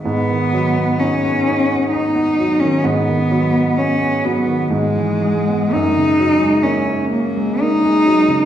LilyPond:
<<
  \new Staff \with { instrumentName = "Cello" } { \time 3/4 \key gis \minor \tempo 4 = 64 b4 cis'4 dis'8. cis'16 | b4 cis'8 b8 gis4 | dis'4 cis'8 ais8 dis'4 | }
  \new Staff \with { instrumentName = "Grand piano" } { \clef bass \time 3/4 \key gis \minor gis,16 dis16 fis16 b16 dis'16 b16 dis'16 b16 dis'16 b16 fis16 dis16 | gis,16 dis16 fis16 b16 cis'16 b16 fis16 dis16 gis,16 e16 gis16 b16 | fis,16 cis16 fis16 gis16 ais16 cis'16 ais16 gis16 ais16 gis16 fis16 cis16 | }
>>